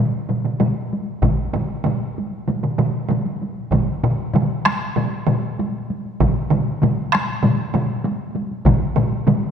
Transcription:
0.15 taiko high soft
0.29 taiko low-mid medium
0.29 taiko mid medium
0.29 taiko high soft
0.45 taiko low-mid medium
0.45 taiko mid medium
0.45 taiko high soft
0.60 taiko low-mid medium
0.60 taiko mid medium
0.60 taiko high medium
0.93 taiko high soft
1.09 taiko high soft
1.22 taiko medium
1.22 taiko low-mid medium
1.22 taiko mid medium
1.22 taiko high medium
1.39 taiko high soft
1.53 taiko low-mid medium
1.53 taiko mid medium
1.53 taiko high soft
1.71 taiko high soft
1.84 taiko low-mid medium
1.84 taiko mid medium
1.84 taiko high medium
2.02 taiko high soft
2.18 taiko high medium
2.33 taiko high soft
2.48 taiko low-mid medium
2.48 taiko mid medium
2.48 taiko high medium
2.63 taiko low-mid medium
2.63 taiko mid medium
2.63 taiko high soft
2.78 taiko low-mid loud
2.78 taiko mid medium
2.78 taiko high soft
2.95 taiko high soft
3.09 taiko low-mid medium
3.09 taiko mid medium
3.09 taiko high medium
3.25 taiko high soft
3.42 taiko high soft
3.58 taiko high soft
3.71 taiko medium
3.71 taiko low-mid medium
3.71 taiko mid loud
3.71 taiko high medium
3.89 taiko high soft
4.04 taiko low-mid medium
4.04 taiko mid medium
4.20 taiko high soft
4.34 taiko low-mid loud
4.34 taiko mid medium
4.34 taiko high medium
4.52 taiko high soft
4.65 taiko rim medium
4.65 taiko high medium
4.82 taiko high soft
4.96 taiko low-mid medium
4.96 taiko mid medium
4.96 taiko high medium
5.13 taiko high soft
5.27 taiko low-mid medium
5.27 taiko mid loud
5.27 taiko high medium
5.44 taiko high soft
5.60 taiko high medium
5.90 taiko high soft
6.05 taiko high soft
6.20 taiko medium
6.20 taiko low-mid loud
6.20 taiko mid loud
6.20 taiko high medium
6.37 taiko high soft
6.51 taiko low-mid medium
6.51 taiko mid medium
6.51 taiko high medium
6.68 taiko high soft
6.82 taiko low-mid medium
6.82 taiko mid medium
6.82 taiko high medium
6.99 taiko high soft
7.13 taiko rim medium
7.13 taiko high medium
7.30 taiko high soft
7.43 taiko low-mid medium
7.43 taiko mid medium
7.43 taiko high medium
7.60 taiko high soft
7.74 taiko low-mid loud
7.74 taiko mid medium
7.74 taiko high medium
7.91 taiko high soft
8.05 taiko high medium
8.36 taiko high medium
8.51 taiko high soft
8.65 taiko medium
8.65 taiko low-mid loud
8.65 taiko mid loud
8.65 taiko high medium
8.82 taiko high soft
8.96 taiko low-mid medium
8.96 taiko mid loud
8.96 taiko high medium
9.13 taiko high soft
9.27 taiko low-mid loud
9.27 taiko mid loud
9.27 taiko high medium
9.42 taiko high soft

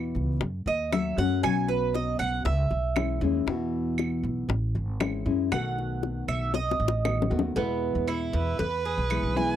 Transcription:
0.00 0.16 E2 medium
0.00 0.40 B2 medium
0.00 0.41 E3 medium
0.00 0.41 B3 medium
0.00 0.41 E4 medium
0.00 0.41 F#4 medium
0.15 0.40 C#2 medium
0.15 high bongo soft
0.41 0.65 F#2 loud
0.41 muted nylon-string guitar stroke medium
0.41 high bongo medium
0.66 1.15 D#2 medium
0.66 0.92 D#5 medium
0.66 high bongo soft
0.92 1.17 F#3 soft
0.92 1.17 A3 soft
0.92 1.17 C#4 medium
0.92 1.17 F#4 soft
0.92 1.18 E5 medium
0.92 high bongo medium
0.92 low bongo medium
0.92 claves medium
1.18 1.42 F#2 medium
1.18 1.43 F#3 medium
1.18 1.43 A3 medium
1.18 1.43 C#4 medium
1.18 1.43 F#4 medium
1.18 1.43 F#5 loud
1.18 high bongo soft
1.43 2.16 B1 medium
1.43 2.44 B2 medium
1.43 2.45 F#3 medium
1.43 2.45 B3 medium
1.43 2.45 C#4 medium
1.43 2.46 F#4 medium
1.43 1.68 G#5 loud
1.43 high bongo medium
1.43 claves medium
1.68 1.94 B4 medium
1.68 high bongo soft
1.94 2.19 D#5 medium
1.94 high bongo medium
2.19 2.44 B1 medium
2.19 2.44 F#5 loud
2.19 claves medium
2.45 2.70 C#2 loud
2.45 3.94 E5 medium
2.45 muted nylon-string guitar stroke medium
2.45 high bongo medium
2.71 3.19 B1 medium
2.71 high bongo soft
2.96 3.21 E3 soft
2.96 3.21 G#3 medium
2.96 3.21 C#4 medium
2.96 3.21 E4 medium
2.96 high bongo medium
2.96 low bongo medium
2.96 claves medium
3.21 3.46 D#2 loud
3.21 3.46 E3 medium
3.21 3.47 G#3 medium
3.21 3.47 C#4 medium
3.21 3.47 E4 medium
3.21 high bongo soft
3.47 4.25 E2 medium
3.47 4.48 B2 medium
3.47 4.48 E3 medium
3.47 4.49 B3 medium
3.47 4.49 E4 medium
3.47 4.49 F#4 medium
3.47 high bongo medium
3.98 high bongo medium
3.98 claves medium
4.23 4.48 B1 medium
4.23 high bongo soft
4.49 4.73 A1 loud
4.49 muted nylon-string guitar stroke medium
4.49 high bongo medium
4.75 5.24 G#1 medium
4.75 high bongo soft
5.00 5.25 E3 soft
5.00 5.25 G#3 medium
5.00 5.25 C#4 medium
5.00 5.25 E4 medium
5.00 high bongo medium
5.00 low bongo medium
5.00 claves medium
5.26 5.50 F#2 loud
5.26 5.52 G#3 medium
5.26 5.51 C#4 medium
5.26 5.51 E4 medium
5.26 high bongo soft
5.51 6.25 B1 medium
5.51 6.53 B2 medium
5.51 6.53 D#3 medium
5.51 6.53 A3 medium
5.51 6.54 B3 medium
5.51 6.54 F#4 medium
5.51 6.25 F#5 loud
5.51 high bongo medium
5.51 claves medium
5.78 high bongo soft
6.03 high bongo medium
6.28 6.77 B1 medium
6.28 6.53 E5 loud
6.28 claves medium
6.54 7.40 D#5 loud
6.54 muted nylon-string guitar stroke medium
6.54 high bongo medium
6.71 high bongo medium
6.80 7.28 A1 medium
6.88 high bongo medium
7.05 7.30 D#3 soft
7.05 7.30 A3 medium
7.05 7.30 B3 medium
7.05 7.29 F#4 medium
7.05 low bongo medium
7.05 claves medium
7.22 low bongo loud
7.30 7.55 D#2 loud
7.30 7.56 D#3 medium
7.30 7.56 A3 medium
7.30 7.56 B3 medium
7.30 7.55 F#4 medium
7.39 low bongo loud
7.55 7.93 E2 loud
7.55 8.57 B2 medium
7.55 8.59 E3 medium
7.55 8.58 G#3 medium
7.55 8.06 B3 medium
7.55 8.59 B3 medium
7.55 8.59 E4 medium
7.55 cowbell loud
7.95 8.32 E2 medium
8.08 8.58 E4 medium
8.08 cowbell medium
8.08 claves medium
8.33 8.58 E2 loud
8.33 9.38 B4 medium
8.33 cowbell medium
8.59 8.96 E2 medium
8.59 8.84 B4 medium
8.59 muted nylon-string guitar stroke medium
8.59 cowbell loud
8.85 9.35 G#4 medium
8.98 9.22 B1 medium
9.10 9.35 E3 medium
9.10 9.35 G#3 medium
9.10 9.36 B3 soft
9.10 9.35 E4 soft
9.10 cowbell medium
9.10 claves medium
9.23 9.56 B1 medium
9.36 9.56 E3 medium
9.36 9.56 G#3 medium
9.36 9.56 B3 medium
9.36 9.56 E4 medium
9.36 9.56 B4 medium
9.36 9.56 G#5 loud

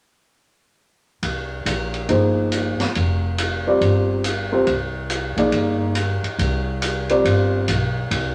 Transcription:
1.23 1.63 C2 medium
1.23 ride soft
1.66 2.06 A#1 medium
1.66 hi-hat pedal soft
1.66 ride medium
1.94 ride soft
2.09 2.76 G1 medium
2.09 2.74 F3 soft
2.09 2.74 A#3 soft
2.09 2.74 D#4 soft
2.09 2.75 G#4 soft
2.09 2.75 C5 soft
2.09 ride soft
2.52 hi-hat pedal soft
2.52 ride soft
2.80 muted upright bass stroke soft
2.80 snare soft
2.80 ride soft
2.95 3.78 F1 medium
2.95 ride soft
3.38 hi-hat pedal soft
3.38 ride soft
3.66 4.21 G3 soft
3.66 4.22 C4 soft
3.66 4.22 F4 soft
3.66 4.22 A#4 soft
3.66 4.22 D5 medium
3.81 4.63 G1 medium
3.81 ride soft
4.24 hi-hat pedal soft
4.24 ride soft
4.52 4.66 G3 medium
4.52 4.66 C4 medium
4.52 4.66 F4 soft
4.52 4.66 A#4 soft
4.52 4.66 C5 medium
4.67 5.34 C2 medium
4.67 ride soft
5.10 hi-hat pedal soft
5.10 ride soft
5.37 5.51 A#1 medium
5.37 5.93 A#3 soft
5.37 5.93 D#4 soft
5.37 5.93 G#4 soft
5.37 5.93 D5 soft
5.37 5.93 F5 medium
5.37 ride soft
5.52 6.20 G1 medium
5.52 ride soft
5.95 hi-hat pedal soft
5.95 ride soft
6.23 muted upright bass stroke soft
6.23 ride soft
6.38 7.21 C2 medium
6.38 ride soft
6.82 hi-hat pedal soft
6.82 ride soft
7.09 7.65 G3 soft
7.09 7.65 C4 soft
7.09 7.65 F4 soft
7.09 7.65 A#4 soft
7.09 7.65 D5 medium
7.09 ride soft
7.25 7.65 G1 medium
7.25 ride soft
7.68 8.08 B1 medium
7.68 hi-hat pedal soft
7.68 ride soft
8.11 8.35 C2 medium
8.11 ride soft

